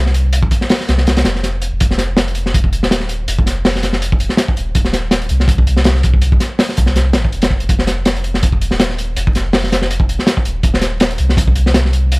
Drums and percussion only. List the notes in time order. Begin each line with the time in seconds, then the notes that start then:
0.06 snare
0.14 closed hi-hat
0.33 closed hi-hat
0.43 kick
0.51 kick, closed hi-hat
0.61 snare
0.69 snare, open hi-hat
0.80 snare
0.89 snare, closed hi-hat
0.98 snare
1.07 snare, closed hi-hat
1.17 snare, closed hi-hat
1.25 snare, closed hi-hat
1.35 snare
1.43 snare, closed hi-hat
1.62 closed hi-hat
1.80 kick, closed hi-hat
1.91 snare
1.98 snare, closed hi-hat
2.17 snare, closed hi-hat
2.28 closed hi-hat
2.35 closed hi-hat
2.46 snare
2.54 kick, closed hi-hat
2.64 kick
2.73 closed hi-hat
2.83 snare
2.91 snare, closed hi-hat
3.00 snare
3.09 closed hi-hat
3.28 closed hi-hat
3.38 kick
3.46 snare, closed hi-hat
3.65 snare, open hi-hat
3.75 snare
3.83 snare, closed hi-hat
3.93 snare
4.02 closed hi-hat
4.12 kick
4.20 closed hi-hat
4.29 snare
4.37 snare, closed hi-hat
4.48 kick
4.57 closed hi-hat
4.75 kick, closed hi-hat
4.85 snare
4.93 snare, closed hi-hat
5.11 snare, closed hi-hat
5.22 closed hi-hat
5.29 closed hi-hat
5.40 snare
5.48 kick, closed hi-hat
5.58 kick
5.67 closed hi-hat
5.77 snare
5.84 snare, closed hi-hat
5.95 snare
6.03 kick, closed hi-hat
6.14 kick
6.22 closed hi-hat
6.32 kick
6.40 snare, closed hi-hat
6.59 snare, open hi-hat
6.69 snare
6.77 kick, closed hi-hat
6.86 snare
6.96 snare, closed hi-hat
7.13 snare, closed hi-hat
7.24 kick
7.32 closed hi-hat
7.42 snare, closed hi-hat
7.50 kick
7.60 closed hi-hat
7.69 kick, closed hi-hat
7.79 snare
7.87 snare, closed hi-hat
8.05 snare, closed hi-hat
8.16 closed hi-hat
8.24 closed hi-hat
8.34 snare
8.43 kick, closed hi-hat
8.52 kick
8.61 closed hi-hat
8.71 snare
8.79 snare, closed hi-hat
8.89 snare
8.98 closed hi-hat
9.16 closed hi-hat
9.27 kick
9.35 snare, closed hi-hat
9.53 snare, open hi-hat
9.64 snare
9.72 snare, closed hi-hat
9.82 snare
9.91 closed hi-hat
10.00 kick
10.09 closed hi-hat
10.19 snare
10.27 snare, closed hi-hat
10.37 kick
10.45 closed hi-hat
10.63 kick, closed hi-hat
10.74 snare
10.81 snare, closed hi-hat
11.00 snare, closed hi-hat
11.11 closed hi-hat
11.18 closed hi-hat
11.29 snare
11.37 kick, closed hi-hat
11.48 kick
11.56 closed hi-hat
11.66 snare
11.74 snare, closed hi-hat
11.85 snare
11.93 closed hi-hat
12.12 closed hi-hat